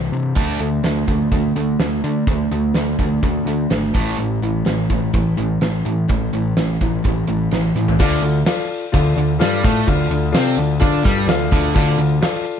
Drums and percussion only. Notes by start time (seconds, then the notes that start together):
0.01 snare
0.36 kick, open hi-hat
0.84 snare, open hi-hat
1.08 kick
1.31 kick, open hi-hat
1.80 snare, open hi-hat
2.27 kick, open hi-hat
2.74 snare, open hi-hat
2.99 kick
3.23 kick, open hi-hat
3.71 snare, open hi-hat
3.82 snare
3.95 kick
4.19 open hi-hat
4.66 snare, open hi-hat
4.90 kick
5.14 kick, open hi-hat
5.62 snare, open hi-hat
6.10 kick, open hi-hat
6.57 snare, open hi-hat
6.81 kick
7.05 kick, open hi-hat
7.53 snare, open hi-hat
7.76 snare
7.88 floor tom
8.00 kick, crash
8.23 tambourine, crash
8.46 snare, tambourine, crash
8.70 tambourine, crash
8.94 kick, tambourine, crash
9.18 crash
9.41 snare, tambourine, crash
9.64 kick, tambourine, crash
9.88 kick, crash
10.11 tambourine, crash
10.35 snare, tambourine, crash
10.58 tambourine, crash
10.82 kick, tambourine, crash
11.05 kick, crash
11.29 snare, tambourine, crash
11.52 kick, tambourine, crash
11.76 kick, crash
12.00 tambourine, crash
12.23 snare, tambourine, crash
12.46 tambourine, crash